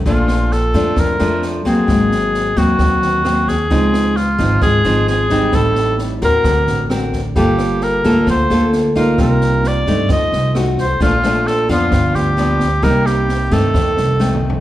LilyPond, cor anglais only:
\new Staff \with { instrumentName = "Cor anglais" } { \time 4/4 \key bes \major \tempo 4 = 132 f'4 a'4 bes'4 r8 aes'8~ | aes'4. ges'2 aes'8~ | aes'4 f'4 aes'4 aes'4 | a'4 r8 bes'4. r4 |
g'4 bes'4 c''4 r8 bes'8 | bes'4 d''4 ees''4 r8 c''8 | f'4 a'8 f'4 g'4. | bes'8 g'4 a'2 r8 | }